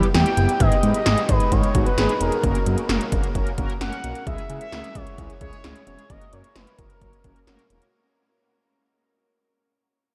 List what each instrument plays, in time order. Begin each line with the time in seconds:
0.03 closed hi-hat
0.14 analog synth bass E2, analog polysynth G3 B3 E4 G4, analog synth lead G5, snare, closed hi-hat
0.26 closed hi-hat
0.37 analog synth bass F#1, analog polysynth G3 B3 E4 G4, closed hi-hat
0.49 closed hi-hat
0.60 analog synth bass G#1, analog polysynth G#3 B3 D#4 G#4, analog synth lead D#5, kick, closed hi-hat
0.72 closed hi-hat
0.83 analog synth bass G#2, analog polysynth G#3 B3 D#4 B4, closed hi-hat
0.94 analog synth lead D#5, closed hi-hat
1.06 analog synth bass G#1, analog polysynth G#3 B3 D#4 G#4, snare, closed hi-hat
1.18 closed hi-hat
1.29 analog synth bass G#1, analog polysynth G#3 B3 D#4 G#4, analog synth lead B4, kick, closed hi-hat
1.40 closed hi-hat
1.52 analog synth bass G#1, analog polysynth G#3 B3 D#4 A#4, analog synth lead C#5, kick, closed hi-hat
1.63 closed hi-hat
1.75 analog synth bass G#1, analog polysynth G#3 B3 D#4 F#4, kick, closed hi-hat
1.86 analog synth lead B4, closed hi-hat
1.98 analog synth bass G#1, analog polysynth G#3 B3 D#4 G#4, snare, closed hi-hat
2.09 closed hi-hat
2.21 analog synth bass E1, analog polysynth G#3 B3 D#4 G#4, analog synth lead A#4, closed hi-hat
2.32 closed hi-hat
2.43 analog synth bass F#1, analog polysynth A#3 C#4 F#4 A#4, kick, closed hi-hat
2.55 closed hi-hat
2.66 analog synth bass F#2, analog polysynth A#3 C#4 F#4 A#4, closed hi-hat
2.78 closed hi-hat
2.89 analog synth bass F#1, analog polysynth A#3 C#4 F#4 A#4, snare, closed hi-hat
3.01 closed hi-hat
3.12 analog synth bass F#1, analog polysynth A#3 C#4 F#4 A#4, kick, closed hi-hat
3.24 closed hi-hat
3.35 analog synth bass F#1, analog polysynth A#3 C#4 F#4 A#4, kick, closed hi-hat
3.47 closed hi-hat
3.58 analog synth bass F#1, analog polysynth A#3 C#4 F#4 A#4, kick, closed hi-hat
3.70 closed hi-hat
3.81 analog synth bass F#1, analog polysynth A#3 C#4 F#4 A#4, analog synth lead F#5, snare, closed hi-hat
3.92 closed hi-hat
4.04 analog synth bass B1, analog polysynth A#3 C#4 F#4 A#4, closed hi-hat
4.15 closed hi-hat
4.27 analog synth bass C#2, analog polysynth G#3 C#4 E4 G#4, analog synth lead E5, kick, closed hi-hat
4.38 closed hi-hat
4.50 analog synth bass C#3, analog polysynth G#3 C#4 E4 G#4, closed hi-hat
4.61 analog synth lead E5, closed hi-hat
4.72 analog synth bass C#2, analog polysynth G#3 C#4 E4 G#4, snare, closed hi-hat
4.84 closed hi-hat
4.95 analog synth bass C#2, analog polysynth G#3 C#4 E4 G#4, analog synth lead C#5, kick, closed hi-hat
5.07 closed hi-hat
5.18 analog synth bass C#2, analog polysynth G#3 C#4 E4 G#4, kick, closed hi-hat
5.30 closed hi-hat
5.41 analog synth bass C#2, analog polysynth G#3 C#4 E4 G#4, analog synth lead C#5, kick, closed hi-hat
5.53 closed hi-hat
5.64 analog synth bass C#2, analog polysynth G#3 C#4 E4 G#4, snare, closed hi-hat
5.76 closed hi-hat
5.87 analog synth bass E1, analog polysynth G#3 C#4 E4 G#4, analog synth lead C#5, closed hi-hat
5.99 closed hi-hat
6.10 analog synth bass F#1, analog polysynth A#3 C#4 F#4 A#4, analog synth lead D#5, kick, closed hi-hat
6.21 closed hi-hat
6.33 analog synth bass F#2, analog polysynth A#3 C#4 F#4 A#4, analog synth lead C#5, closed hi-hat
6.44 closed hi-hat
6.56 analog synth bass F#1, analog polysynth A#3 C#4 F#4 A#4, analog synth lead B4, snare, closed hi-hat
6.67 closed hi-hat
6.79 analog synth bass F#1, analog polysynth A#3 C#4 F#4 A#4, analog synth lead A#4, kick, closed hi-hat
6.90 closed hi-hat
7.01 analog synth bass F#1, analog polysynth A#3 C#4 F#4 C#5, kick, closed hi-hat
7.13 closed hi-hat
7.24 analog synth bass F#1, analog polysynth A#3 C#4 F#4 A#4, kick, closed hi-hat
7.36 closed hi-hat
7.47 analog synth bass F#1, analog polysynth A#3 C#4 F#4 A#4, snare, closed hi-hat
7.59 closed hi-hat
7.70 analog synth bass E1, analog polysynth A#3 C#4 F#4 A#4, closed hi-hat
7.82 closed hi-hat